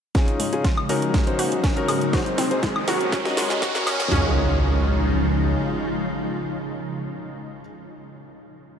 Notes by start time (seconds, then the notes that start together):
0.15 C#2 C#3 C#4 D#4 F4 G#4, kick, snare, closed hi-hat, riser
0.28 C#2, closed hi-hat
0.40 C#2 G#3, open hi-hat
0.53 C#4 D#4 F4 G#4, closed hi-hat
0.64 C#2 F4, kick, snare, closed hi-hat
0.77 high woodblock
0.89 C#2 C#4 D#4 F#4 A#4, open hi-hat
1.02 closed hi-hat
1.14 D#2 G#3, kick, snare, closed hi-hat
1.27 C#4 D#4 F#4 C5, closed hi-hat
1.39 D#2 F#4, open hi-hat
1.52 closed hi-hat
1.64 D#2 C#4, kick, snare, closed hi-hat
1.77 C#4 D#4 F#4 A#4, closed hi-hat
1.88 D#2 G#3, open hi-hat, high woodblock
2.01 closed hi-hat
2.13 C4 D#4 F#4 G#4 C5, kick, snare, closed hi-hat
2.26 G#1, closed hi-hat
2.38 G#1 C4, snare, open hi-hat
2.51 C4 D#4 G#4 C5, closed hi-hat
2.63 G#1 G#3, kick, snare, closed hi-hat
2.76 high woodblock
2.88 G#1 C#4 F#4 A#4 C#5, snare, open hi-hat
3.01 closed hi-hat
3.12 F#1 C#4, kick, snare, closed hi-hat
3.25 C#4 F#4 A#4 D#5, snare, closed hi-hat
3.37 F#1 G#3, snare, open hi-hat
3.50 snare, closed hi-hat
3.62 F#1 F#4, kick, snare, closed hi-hat
3.75 C#4 F#4 A#4 C#5, snare, closed hi-hat
3.87 F#1 C#4, snare, open hi-hat, high woodblock
4.00 snare, closed hi-hat
4.12 C#2 C#3 F3 G#3 C#4 D#4 F4 G#4, snare, floor tom, impact